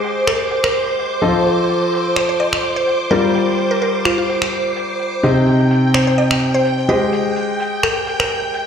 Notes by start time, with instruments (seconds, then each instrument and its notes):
Already playing: grand piano G#3 G4 G#4 C5 D#5, string machine C5 D6
0.04 closed hi-hat
0.27 synth pluck A#4, finger snap, closed hi-hat
0.51 closed hi-hat
0.64 synth pluck A#4, finger snap
0.74 closed hi-hat
0.99 closed hi-hat
1.22 grand piano F3 F4 A4 C5 D#5, closed hi-hat
1.46 closed hi-hat
1.69 closed hi-hat
1.81 closed hi-hat
1.93 closed hi-hat
2.16 synth pluck C5, finger snap, closed hi-hat
2.29 synth pluck C5, closed hi-hat
2.40 synth pluck D#5, closed hi-hat
2.53 finger snap
2.63 closed hi-hat
2.76 synth pluck C5
2.87 closed hi-hat
3.00 closed hi-hat
3.11 grand piano G3 F4 G4 A#4 D5, synth pluck A#4, closed hi-hat
3.35 closed hi-hat
3.58 closed hi-hat
3.71 synth pluck A#4
3.82 synth pluck A#4, closed hi-hat
4.05 synth pluck F4, finger snap, closed hi-hat
4.18 synth pluck F4
4.29 closed hi-hat
4.42 finger snap
4.53 closed hi-hat
4.76 closed hi-hat
4.99 closed hi-hat
5.23 grand piano C3 D#4 G4 C5 D#5, string machine G5, closed hi-hat
5.47 closed hi-hat
5.59 closed hi-hat
5.71 closed hi-hat
5.94 synth pluck C5, finger snap, closed hi-hat
6.07 synth pluck C5, closed hi-hat
6.18 synth pluck D#5, closed hi-hat
6.31 finger snap
6.41 closed hi-hat
6.54 synth pluck C5
6.65 closed hi-hat
6.78 closed hi-hat
6.89 grand piano G#3 G4 G#4 C5 D#5, synth pluck C5, closed hi-hat
7.13 closed hi-hat
7.36 closed hi-hat
7.60 closed hi-hat
7.83 synth pluck A#4, finger snap, closed hi-hat
8.07 closed hi-hat
8.20 synth pluck A#4, finger snap
8.30 closed hi-hat
8.54 closed hi-hat